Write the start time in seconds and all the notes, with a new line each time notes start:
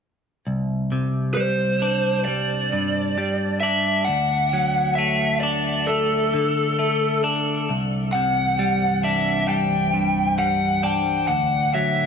0.47 C2
0.92 C3
1.35 G3 C5
1.82 D4
2.25 G3 D5
2.72 G2
3.18 G3
3.60 D4 E5
4.05 D2 F#5
4.53 F#3
4.95 A3 E5
5.40 D4 D5
5.87 A3 A4
6.34 D3
6.79 A3
7.24 D4
7.68 C2 G2 E3 D4 C5
8.13 C3 F#5
8.59 G3
9.04 D4 E5
9.49 G3 G5
9.94 G2
10.38 G3 F#5
10.83 D4 G5
11.28 D2 A2 F#3 A4 F#5
11.74 F#3 E5